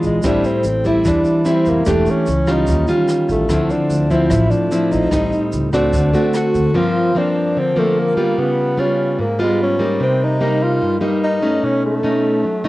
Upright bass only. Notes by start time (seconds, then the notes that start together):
0.04 A#1
0.24 A1
0.65 A1
1.06 E2
1.67 F1
1.87 E1
2.27 C#2
2.68 D#2
3.29 A1
3.49 D2
3.90 D2
4.31 A1
4.92 A#1
5.12 A1
5.53 C#2
5.93 D2
6.55 D2